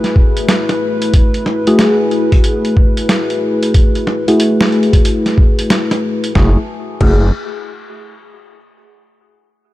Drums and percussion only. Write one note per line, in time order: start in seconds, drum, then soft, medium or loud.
0.04 snare soft
0.04 closed hi-hat soft
0.16 kick loud
0.37 closed hi-hat medium
0.49 snare loud
0.49 closed hi-hat medium
0.69 snare medium
0.69 closed hi-hat soft
1.02 closed hi-hat medium
1.14 kick loud
1.14 closed hi-hat medium
1.34 closed hi-hat soft
1.46 snare medium
1.67 closed hi-hat medium
1.79 snare loud
1.79 closed hi-hat medium
2.11 closed hi-hat soft
2.32 kick loud
2.32 closed hi-hat soft
2.44 closed hi-hat medium
2.65 closed hi-hat soft
2.77 kick loud
2.97 closed hi-hat soft
3.09 snare loud
3.09 closed hi-hat medium
3.30 closed hi-hat soft
3.63 closed hi-hat soft
3.74 kick loud
3.74 closed hi-hat medium
3.95 closed hi-hat soft
4.07 snare medium
4.28 closed hi-hat soft
4.40 closed hi-hat medium
4.61 snare loud
4.61 closed hi-hat soft
4.67 closed hi-hat soft
4.72 closed hi-hat soft
4.83 closed hi-hat soft
4.93 kick loud
4.93 closed hi-hat medium
5.05 closed hi-hat medium
5.26 snare soft
5.26 closed hi-hat soft
5.38 kick loud
5.59 closed hi-hat medium
5.70 snare loud
5.70 closed hi-hat medium
5.91 snare medium
5.91 closed hi-hat soft
6.24 closed hi-hat medium
6.35 kick loud
6.35 snare medium
7.01 kick loud
7.01 crash medium